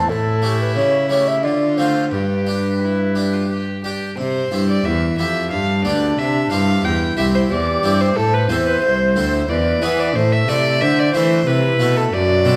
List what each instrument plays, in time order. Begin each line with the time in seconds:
Already playing: violin C4, flute A5
0.09 harpsichord A2, cello A2, violin E4, flute A4
0.42 harpsichord A3 C#4 G4
0.60 flute B4
0.75 cello C#3, harpsichord C#3, flute C#5
1.09 harpsichord A3 C#4 G4, flute C#5
1.28 flute E5
1.43 cello D3, harpsichord D3, violin F4, flute D5
1.77 harpsichord A3 C4 F4, flute C5
2.11 harpsichord G2, cello G2, violin G4, flute B4
2.46 harpsichord D4 G4
2.82 violin E4
3.15 harpsichord D4 G4
3.33 violin F4
3.50 violin G4
3.84 harpsichord D4 G4, violin G4
4.17 harpsichord C3, cello C3, violin C5
4.51 harpsichord G2 E4 G4, cello G2
4.70 violin D5
4.84 harpsichord E2, cello E2, flute E4, violin E5
5.18 harpsichord F2 E4 G4, cello F2, violin E5
5.51 harpsichord G2, cello G2, flute D4, violin F5
5.84 cello D2, harpsichord D2 B3 D4 G4, violin D5
6.18 harpsichord C3, cello C3, violin E5
6.50 harpsichord G2 C4 E4 G4, cello G2, violin F5
6.84 harpsichord E2, cello E2, flute E4, violin G5
7.17 cello C2, harpsichord C2 C4 E4 G4, violin E5
7.35 violin C5
7.50 harpsichord E2, cello E2, flute G4, violin D5
7.83 cello G2, harpsichord G2 C4 E4 G4
8.01 violin C5
8.16 cello A2, harpsichord A2, violin A4, flute C5
8.34 violin B4
8.49 harpsichord E2 C4 E4 A4, cello E2, violin C5
8.67 violin B4
8.82 harpsichord C2, cello C2, violin C5
9.16 harpsichord D2 C4 E4 A4, cello D2, violin C5
9.49 harpsichord E2, cello E2, flute B4, violin D5
9.82 harpsichord E3 B3 E4 G#4, cello E3, violin B4
10.00 violin D5
10.15 cello A2, harpsichord A2, flute A4, violin C5
10.32 violin E5
10.48 cello C3, harpsichord C3 A3 E4 A4, violin D5
10.81 harpsichord D3, cello D3, flute C5, violin E5
10.99 violin D5
11.14 harpsichord E3 A3 E4 A4, cello E3, violin C5
11.47 cello C3, harpsichord C3, flute E4, violin B4
11.79 harpsichord B2 A3 E4 A4, cello B2
11.97 violin A4
12.13 cello F#2, harpsichord F#2, flute F#4, violin D5
12.45 harpsichord B2 C4 D4 A4, cello B2